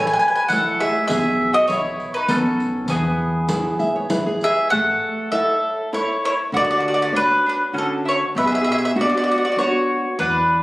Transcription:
Already playing: G#4 A4 C#5
0.05 B4 G#5
0.13 B4 G#5
0.19 B4 G#5, riq
0.28 B4 G#5
0.36 B4 G#5
0.48 A3 E4 A4 C#5 F#5, riq
0.80 G#4 E5, riq
1.08 B1 B3 G#4 E5, riq
1.53 F#4 D#5
1.68 E4 G#4 B4 C#5 E5, riq
2.00 riq
2.14 D#4 B4
2.28 B1 B3 C#4 A4, riq
2.60 riq
2.88 E2 E3 B3 G#4, riq
3.49 E4 G#4 B4, riq
3.79 E5, riq
3.96 C#5
4.10 E4 G#4 B4, riq
4.26 G#4
4.41 G#4 E5, riq
4.70 A1 A3 A4 F#5
5.32 E4 A4 C#5 E5
5.93 E4 A4 C#5
6.25 E4 C#5
6.52 D2 D3 F#4
6.57 D5
6.61 F#4 D5
6.71 F#4 D5
6.79 F#4 D5
6.88 F#4 D5
6.93 F#4 D5
7.02 F#4 D5
7.12 D4 F#4 B4 C#5
7.46 D4 B4
7.73 D3 C#4 F#4
7.78 A4
8.05 E4 C#5
8.35 B1 B2 B4 E5
8.45 G#4 E5
8.52 G#4 E5
8.61 G#4 E5
8.67 G#4
8.72 G#4 E5
8.78 G#4 E5
8.85 E5
8.95 B3 D4 F#4
9.01 D5
9.06 F#4 D5
9.14 F#4 D5
9.23 F#4 D5
9.29 F#4 D5
9.38 F#4 D5
9.45 F#4 D5
9.52 F#4 D5
9.56 B3 D4 F#4 C#5
9.61 F#4
10.19 E2 E3 D4 B4

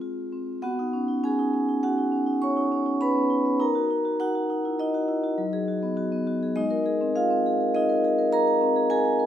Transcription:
Already playing: G#3 C4
0.00 F4
0.32 C4
0.62 B3 F#4 F#5
0.79 D#4
0.93 C#4
1.08 D#4
1.24 C#4 G#4 G#5
1.39 D#4
1.54 C#4
1.69 D#4
1.83 C#4 F#4 F#5
1.98 D#4
2.12 C#4
2.27 D#4
2.42 C#4 C#5 C#6
2.57 D#4
2.72 C#4
2.86 D#4
3.01 C#4 B4 B5
3.15 B3
3.30 D#4
3.45 C#4
3.60 D#4 A#4 A#5
3.75 F#4
3.91 D#4
4.05 F#4
4.20 D#4 F#4 F#5
4.35 F#4
4.50 D#4
4.65 E4
4.79 D#4 D#5
4.94 F#4
5.08 E4
5.24 F#4
5.38 F#3
5.53 G#4
5.68 F#4
5.83 B3
5.97 F#4
6.12 B3
6.27 F#4
6.43 G#4
6.56 G#3 D#4 D#5
6.70 A#4
6.86 G#4
7.01 C4
7.16 F4 G#4 F5
7.30 C4
7.46 G#4
7.61 A#4
7.75 D#4 G#4 D#5
7.89 A#4
8.04 G#4
8.18 A#4
8.32 G#4 A#4 A#5
8.47 A#4
8.61 C4
8.76 G#4
8.90 G#4 A#4 G#5
9.05 G#4
9.19 A#4

